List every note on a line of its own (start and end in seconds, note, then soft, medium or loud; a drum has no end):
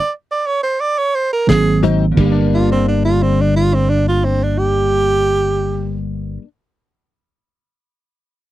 0.00 0.11 D5 loud
0.32 0.48 D5 medium
0.47 0.63 C#5 medium
0.63 0.82 C5 medium
0.81 1.00 D5 medium
0.98 1.16 C#5 loud
1.15 1.31 C5 medium
1.33 1.48 A#4 medium
1.47 2.13 G#1 medium
1.47 2.16 D#3 medium
1.47 2.16 F#3 medium
1.47 2.15 A#3 medium
1.47 2.17 C4 medium
1.47 1.82 G#4 loud
1.47 kick medium
1.47 snare medium
1.47 closed hi-hat medium
1.83 2.04 G#2 medium
1.83 2.04 F#3 medium
1.83 2.05 C4 medium
1.83 2.05 D#4 loud
1.83 closed hi-hat medium
2.12 6.38 G2 medium
2.12 6.34 D3 medium
2.12 6.35 G3 medium
2.16 6.36 G1 medium
2.16 6.42 G3 medium
2.16 6.36 A#3 medium
2.16 6.37 D4 medium
2.16 kick loud
2.16 crash medium
2.26 6.45 A#3 medium
2.32 6.48 D4 medium
2.54 2.70 F4 medium
2.72 2.85 C4 medium
2.88 3.04 D4 medium
3.05 3.24 F4 medium
3.22 3.43 C4 medium
3.41 3.54 D4 medium
3.56 3.76 F4 loud
3.74 3.91 C4 loud
3.89 4.05 D4 medium
4.08 4.26 F4 medium
4.24 4.45 C4 medium
4.43 4.60 D4 medium
4.58 6.01 G4 loud